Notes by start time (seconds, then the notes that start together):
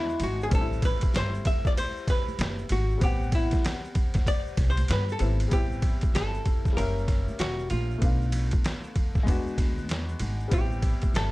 Already playing: E2 G#3 B3 D4 E4 F#4
0.10 shaker
0.20 G#1 F#4, ride, high conga, low conga, shaker
0.41 G#4, shaker
0.48 A1 G3 A3, kick, ride
0.52 C4 D4 A4, shaker
0.61 E4
0.73 shaker
0.82 B4, kick, ride, high conga, low conga, shaker
1.01 kick, ride, shaker
1.13 G1 C5, snare, hi-hat pedal, ride, shaker
1.34 shaker
1.45 E5, kick, ride, low conga, shaker
1.65 D5, kick, snare, shaker
1.77 C5, ride, high conga, shaker
1.97 shaker
2.08 B4, kick, snare, ride, shaker
2.28 high conga, shaker
2.39 F#1, snare, hi-hat pedal, ride, shaker
2.58 shaker
2.69 G#1 F#4, ride, high conga, low conga, shaker
2.91 shaker
2.98 A1 G3 B3, kick, ride
3.02 C4 G4 F#5, shaker
3.22 shaker
3.32 E4, kick, ride, high conga, low conga, shaker
3.51 kick, snare, ride, high conga, shaker
3.65 snare, hi-hat pedal, ride, shaker
3.85 shaker
3.95 kick, ride, low conga, shaker
4.14 E2, kick, snare, ride, shaker
4.27 D5, kick, ride, high conga, shaker
4.47 shaker
4.57 C2, kick, snare, ride, shaker
4.70 C5
4.77 ride, high conga, shaker
4.88 G2 B4, snare, hi-hat pedal, ride, shaker
5.09 A4, shaker
5.19 G#1 G3 B3 C4 E4, ride, high conga, low conga, shaker
5.40 ride, shaker
5.48 A1 G3 B3, kick, ride, shaker
5.52 C4 E4 G4
5.72 shaker
5.82 kick, ride, low conga, shaker
6.01 kick, ride, high conga, shaker
6.14 G1 A4, snare, hi-hat pedal, ride, shaker
6.34 shaker
6.46 kick, ride, low conga, shaker
6.65 kick, snare, shaker
6.73 G3 A#3
6.77 F#1 C#4 A#4 E5, ride, high conga, shaker
6.98 shaker
7.08 kick, snare, ride, shaker
7.28 high conga, shaker
7.39 E1 F#4, snare, hi-hat pedal, ride, shaker
7.59 shaker
7.70 A#1 F4, ride, high conga, low conga, shaker
7.91 shaker
7.98 B1 A3 B3, kick, ride, shaker
8.02 D4 F4
8.22 shaker
8.32 ride, low conga, shaker
8.51 kick, ride, high conga, shaker
8.64 snare, hi-hat pedal, ride, shaker
8.84 shaker
8.95 kick, ride, low conga, shaker
9.15 A1, kick, snare, shaker
9.23 E2 G#3 B3 D4, kick, high conga, shaker
9.28 F#4, ride
9.47 shaker
9.58 D2, kick, snare, ride, shaker
9.78 high conga, shaker
9.89 E2, snare, hi-hat pedal, ride, shaker
10.09 shaker
10.20 G#1, ride, high conga, low conga, shaker
10.40 shaker
10.48 A1 G3 B3, kick, ride, shaker
10.52 C4 E4 G4
10.72 shaker
10.82 kick, ride, low conga, shaker
11.02 kick, ride, high conga, shaker
11.14 G1 A4, snare, hi-hat pedal, ride, shaker